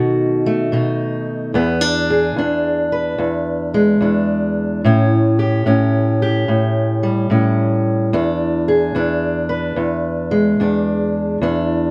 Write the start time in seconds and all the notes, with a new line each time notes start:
Already playing: B2 D#3 A3 D#4 F#4
0.46 A3
0.72 B2 D#4
1.54 E2 B3
1.81 D4
2.10 G#4
2.36 E2 D4
2.92 B4
3.18 E2
3.74 G#3
4.01 E2 D4
4.84 A2 C#4
5.39 G4
5.66 A2 C#4
6.22 G4
6.48 A2
7.03 G3
7.30 A2 C#4
8.13 E2 D4
8.68 G#4
8.95 E2 D4
9.49 B4
9.76 E2
10.31 G#3
10.60 E2 D4
11.41 E2 D4